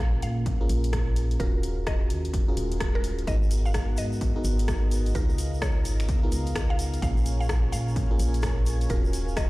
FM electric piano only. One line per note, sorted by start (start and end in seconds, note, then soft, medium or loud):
0.00 0.57 A#3 medium
0.00 0.57 C#4 medium
0.00 0.57 F4 medium
0.00 0.57 G#4 medium
0.00 0.57 A#4 medium
0.61 1.38 A#3 medium
0.61 1.38 C#4 medium
0.61 1.38 F4 medium
0.61 1.38 G#4 medium
0.61 1.38 A#4 medium
1.40 2.45 C#4 medium
1.40 2.45 F4 medium
1.40 2.45 F#4 medium
1.40 2.45 G#4 medium
1.40 2.45 A#4 medium
2.48 3.25 C#4 medium
2.48 3.25 F4 medium
2.48 3.25 F#4 medium
2.48 3.25 G#4 medium
2.48 3.25 A#4 medium
3.27 4.32 B3 medium
3.27 4.32 D#4 medium
3.27 4.32 F#4 medium
3.27 4.32 G#4 medium
3.27 4.32 A#4 medium
4.36 5.13 B3 medium
4.36 5.13 D#4 medium
4.36 5.13 F#4 medium
4.36 5.13 G#4 medium
4.36 5.13 A#4 medium
5.15 6.20 B3 medium
5.15 6.20 D#4 medium
5.15 6.20 F4 medium
5.15 6.20 G#4 medium
5.15 6.20 A#4 medium
6.23 7.00 B3 medium
6.23 7.00 D#4 medium
6.23 7.00 F4 medium
6.23 7.00 G#4 medium
6.23 7.00 A#4 medium
7.02 8.07 A#3 medium
7.02 8.07 C#4 medium
7.02 8.07 F4 medium
7.02 8.07 G#4 medium
7.02 8.07 A#4 medium
8.11 8.88 A#3 medium
8.11 8.88 C#4 medium
8.11 8.88 F4 medium
8.11 8.88 G#4 medium
8.11 8.88 A#4 medium
8.90 9.50 C#4 medium
8.90 9.50 F4 medium
8.90 9.50 F#4 medium
8.90 9.50 G#4 medium
8.90 9.50 A#4 medium